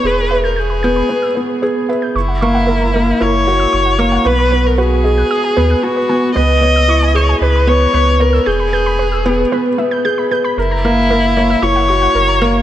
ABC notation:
X:1
M:4/4
L:1/16
Q:1/4=114
K:Elyd
V:1 name="Synth arpeggio sound"
B z e =g' g' b g' b B e' B z B z e g' | c' f c' f A a A z A z c e' c' f c' f | B b B z B z d f' d' g B f' g B g z | B z c e' c' g c' g B b B z B z c e' |
=g' b g' b B e' B z B z e g' g' b g' b | A a A z A z c e' c' f c' f A a A z |]
V:2 name="Viola"
B3 A G8 z4 | E8 c8 | B3 A G8 F4 | d6 c2 B2 c4 A2 |
G12 z4 | E8 c8 |]
V:3 name="Felt piano"
G2 B2 z2 B,2 B,2 B,2 G2 B2 | z2 A,2 A,2 A,2 E2 F2 z2 A,2 | B,2 B,2 F2 G2 z2 B,2 B,2 B,2 | B,2 B,2 E2 G2 z2 B,2 B,2 B,2 |
G2 B2 z2 B,2 B,2 B,2 G2 B2 | z2 A,2 A,2 A,2 E2 F2 z2 A,2 |]
V:4 name="Sub bass" clef=bass
E,,,8 z8 | F,,,8 F,,,4 F,,,4 | B,,,8 z2 D,,2 z4 | C,,8 C,,4 C,,4 |
E,,,8 z8 | F,,,8 F,,,4 F,,,4 |]